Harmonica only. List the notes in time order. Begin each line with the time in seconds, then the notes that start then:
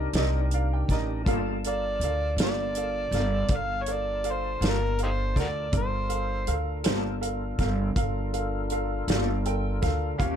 1.68 D5
2.42 D5
3.56 F5
3.82 C#5
3.92 D5
4.31 C5
4.70 A#4
5.03 D#4 G4 C5
5.40 F#4 A#4 D5
5.77 C5